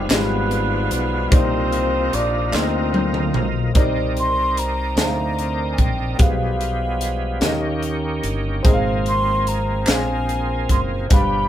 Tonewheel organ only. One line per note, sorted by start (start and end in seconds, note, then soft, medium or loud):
0.00 3.71 F3 medium
0.00 1.29 G#3 medium
0.00 1.29 B3 medium
0.00 3.71 F4 medium
1.31 3.73 A#3 medium
1.31 3.72 D#4 medium
3.75 6.17 C4 medium
3.75 6.17 D#4 medium
3.75 6.17 A#4 medium
3.75 6.17 D5 soft
6.19 7.41 F3 medium
6.19 7.41 G3 medium
6.19 7.41 G#3 medium
6.19 7.41 B3 medium
7.41 8.63 D#3 medium
7.41 11.06 A#3 medium
7.41 8.63 C#4 medium
7.41 8.63 G4 medium
8.64 11.48 F3 medium
8.64 11.08 C4 medium
8.64 11.08 G#4 medium
11.10 11.48 B3 medium
11.10 11.48 D4 soft
11.10 11.48 G4 medium